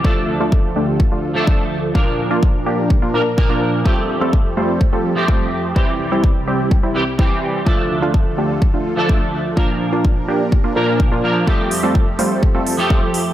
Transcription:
<<
  \new Staff \with { instrumentName = "Supersaw synth" } { \time 4/4 \key f \major \tempo 4 = 126 <a d' f'>8. <a d' f'>8 r16 <a d' g'>8. <a d' f'>8 r16 <a d' f'>8 r8 | <bes d' f'>8. <bes d' f'>8 r16 <bes d' g'>8. <bes d' f'>16 <bes d' bes'>8. <bes d' f'>8. | <g a c' f' a'>8. <g a c' f' a'>8 r16 <g a c' f' c''>8. <g a c' f' a'>8 r16 <g a c' f' a'>8 r8 | <g c' e'>8. <g c' e'>8 r16 <g c' g'>8. <g c' e'>8 r16 <g c' e'>8 r8 |
<a d' f'>8. <a d' f'>8 r16 <a d' g'>8. <a d' f'>8 r16 <a d' f'>8 r8 | <bes d' f'>8. <bes d' f'>8 r16 <bes d' g'>8. <bes d' f'>16 <bes d' bes'>8. <bes d' f'>8. | <g a c' f' a'>8. <g a c' f' a'>8 r16 <g a c' f' c''>8. <g a c' f' a'>8 r16 <g a c' f' a'>8 r8 | }
  \new Staff \with { instrumentName = "Clean electric guitar" } { \time 4/4 \key f \major <f a d' a'>2~ <f a d' a'>8. <f a d' a'>4~ <f a d' a'>16 | <bes, f bes d' bes'>2~ <bes, f bes d' bes'>8 <bes, f bes d' bes'>16 r16 <bes, f bes d' bes'>4 | <f a c' g'>2~ <f a c' g'>8. <f a c' g'>4~ <f a c' g'>16 | <e g c' g'>2~ <e g c' g'>8 <e g c' g'>16 r16 <e g c' g'>4 |
<f a d' a'>2~ <f a d' a'>8. <f a d' a'>4~ <f a d' a'>16 | <bes, f bes d' bes'>2~ <bes, f bes d' bes'>8 <bes, f bes d' bes'>4 <f bes d' bes'>8 | <f a c' g'>2~ <f a c' g'>8. <f a c' g'>4~ <f a c' g'>16 | }
  \new Staff \with { instrumentName = "Supersaw synth" } { \time 4/4 \key f \major << { <d, f' a'>1 | <bes, d' bes'>1 | <f, g' a'>1 | <c, e'>1 |
<d, f' a'>1 | <bes, d' bes'>1 | <f, g' a'>1 | } \\ { d1 | f1 | f1 | c1 |
d1 | f1~ | f1 | } >> }
  \new DrumStaff \with { instrumentName = "Drums" } \drummode { \time 4/4 bd4 bd4 bd4 bd4 | bd4 bd4 bd4 bd4 | bd4 bd4 bd4 bd4 | bd4 bd4 bd4 bd4 |
bd4 bd4 bd4 bd4 | bd4 bd4 bd4 bd4 | bd8 hho8 bd8 hho8 bd8 hho8 bd8 hho8 | }
>>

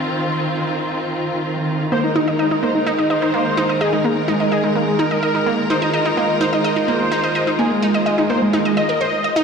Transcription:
<<
  \new Staff \with { instrumentName = "Analog synth lead" } { \time 4/4 \key aes \mixolydian \tempo 4 = 127 << { r1 | c''8 r4 c''8 r8 c''4. | aes'8 r4 aes'8 r8 bes'4. | c''8 r4 c''8 r8 c''4. |
aes'8 r4 c''8 r8 ees''4. | } \\ { r1 | r16 ees'16 ees'16 r16 ees'16 ees'16 r16 ees'16 ees'16 ees'16 r4. | r16 aes16 aes16 r16 aes16 aes16 r16 aes16 aes16 aes16 r4. | r16 ees'16 ees'16 r16 ees'16 ees'16 r16 ees'16 ees'16 ees'16 r4. |
r16 aes16 aes16 r16 aes16 aes16 r16 aes16 aes16 aes16 r4. | } >> }
  \new Staff \with { instrumentName = "String section" } { \time 4/4 \key aes \mixolydian << { <ees f'>1 | <aes bes'>1~ | <aes bes'>1~ | <aes bes'>1~ |
<aes bes'>1 | } \\ { c'1 | ees'1~ | ees'1 | f'1~ |
f'1 | } >> }
  \new Staff \with { instrumentName = "Synth arpeggio sound" } { \time 4/4 \key aes \mixolydian r1 | bes16 r16 ees'16 ees''16 ees''16 ees'16 bes16 r16 ees'16 ees''16 ees''16 ees'16 bes16 r16 ees'16 ees''16 | ees''16 ees'16 bes16 r16 ees'16 ees''16 ees''16 ees'16 bes16 r16 ees'16 ees''16 ees''16 ees'16 bes16 r16 | ees'16 ees''16 ees''16 ees'16 bes16 r16 ees'16 ees''16 ees''16 ees'16 bes16 r16 ees'16 ees''16 ees''16 ees'16 |
bes16 r16 ees'16 ees''16 ees''16 ees'16 bes16 r16 ees'16 ees''16 ees''16 bes'16 c''16 r16 ees''16 ees'16 | }
>>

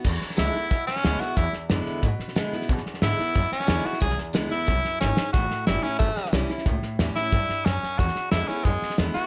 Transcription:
<<
  \new Staff \with { instrumentName = "Tenor saxophone" } { \time 4/4 \key e \mixolydian \tempo 4 = 181 r4 e'4. cis'4 fis'8 | e'8 r2. r8 | r4 e'4. cis'4 fis'8 | gis'8 r4 e'4. cis'4 |
fis'4 e'8 cis'8 a4 r4 | r4. e'4. cis'4 | fis'4 e'8 cis'8 gis4 r8 fis'8 | }
  \new Staff \with { instrumentName = "Steel-string acoustic guitar" } { \time 4/4 \key e \mixolydian << { r4 <d gis b e'>8 <b e'>8 r4 <d gis b e'>8 <b e'>8 | r4 <d gis b e'>4 r4 <d gis b e'>8 <b e'>8 | r4 <d gis b e'>8 <b e'>8 r4 <d gis b e'>8 <b e'>8 | r4 <d gis b e'>8 <b e'>8 r2 |
r4 <e g cis' e'>8 <cis' e'>8 r4 <e g cis' e'>8 <cis' e'>8 | r4 <e g cis' e'>8 <cis' e'>8 r2 | r4 <d gis b e'>8 <b e'>8 r4 <d gis b e'>8 <b e'>8 | } \\ { e,2 b,2 | e,2 b,2 | e,2 b,2 | e,2 fis,4 gis,4 |
a,2 e,2 | a,2 g,4 fis,4 | e,2 b,2 | } >> }
  \new Staff \with { instrumentName = "Upright bass" } { \clef bass \time 4/4 \key e \mixolydian e,8 r8 cis,8 r8 b,,8 r8 d,8 r8 | e,8 r8 fis,8 r8 gis,8 r8 a,8 r8 | b,8 r8 gis,8 r8 fis,8 r8 e,8 r8 | b,,8 r8 cis,8 r8 b,,8 r8 gis,,8 r8 |
a,,8 r8 fis,,8 r8 g,,8 r8 b,,8 r8 | cis,8 r8 e,8 r8 g,8 r8 fis,8 r8 | e,8 r8 f,8 r8 fis,8 r8 e,8 r8 | }
  \new DrumStaff \with { instrumentName = "Drums" } \drummode { \time 4/4 <cymc bd sn>8 sn16 sn16 <hhp sn>8 sn8 <bd sn>8 sn16 sn16 <hhp sn>8 sn8 | <bd sn>8 sn8 <hhp sn>8 sn8 <bd sn>8 sn16 sn16 <hhp sn>8 sn16 sn16 | <bd sn>16 sn16 sn16 sn16 <hhp sn>8 sn8 <bd sn>8 sn16 sn16 <hhp sn>8 sn16 sn16 | <bd sn>16 sn16 sn8 <hhp sn>8 sn8 <bd sn>8 sn8 <hhp sn>8 sn8 |
<bd sn>8 sn8 <hhp sn>8 sn8 <bd sn>8 sn16 sn16 <hhp sn>8 sn16 sn16 | <bd sn>8 sn8 <hhp sn>8 sn8 <bd sn>8 sn8 <hhp sn>8 sn8 | <bd sn>16 sn16 sn8 <hhp sn>8 sn8 <bd sn>8 sn16 sn16 <hhp sn>8 sn8 | }
>>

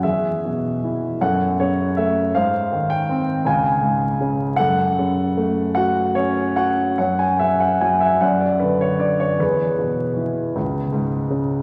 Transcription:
<<
  \new Staff \with { instrumentName = "Grand piano" } { \time 6/8 \key fis \minor \tempo 4. = 52 << { e''4. fis''8 cis''8 e''8 | eis''8. g''8. gis''4 r8 | fis''4. fis''8 cis''8 fis''8 | fis''16 gis''16 e''16 fis''16 gis''16 e''16 fis''16 d''16 b'16 cis''16 d''16 cis''16 |
b'2~ b'8 r8 | } \\ { gis'4. a'4. | bis'4. eis''4. | a'2~ a'8 r8 | cis''4. d''4. |
gis'2~ gis'8 r8 | } >> }
  \new Staff \with { instrumentName = "Grand piano" } { \clef bass \time 6/8 \key fis \minor e,8 b,8 e8 fis,8 cis8 a8 | gis,8 dis8 bis8 cis,8 gis,8 cis8 | fis,8 cis8 a8 fis'8 cis'8 fis'8 | fis,8 cis8 fis8 fis,8 d8 d'8 |
e,8 b,8 e8 cis,8 gis,8 cis8 | }
>>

